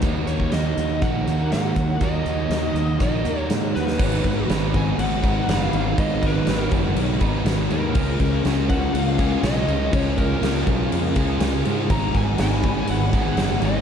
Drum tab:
CC |----------------|----------------|x-x-x-x-x-x-x-x-|x-x-x-x-x-x-x-x-|
HH |x-x-x-x-x-x-x-x-|x-x-x-x-x-x-x---|----------------|----------------|
SD |----o-------o---|----o-------o-oo|----o-------o---|----o-------o---|
BD |o--o----o-----o-|o-------o-------|o-o---o---o-----|o-o---o---o-----|

CC |x-x-x-x-x-x-x-x-|x-x-x-x-x-x-x-x-|x-x-x-x-x-x-x-x-|
HH |----------------|----------------|----------------|
SD |----o-------o---|----o-------o---|----o-------o---|
BD |o-o---o---o-----|o-o---o---o-----|o-o---o---o-----|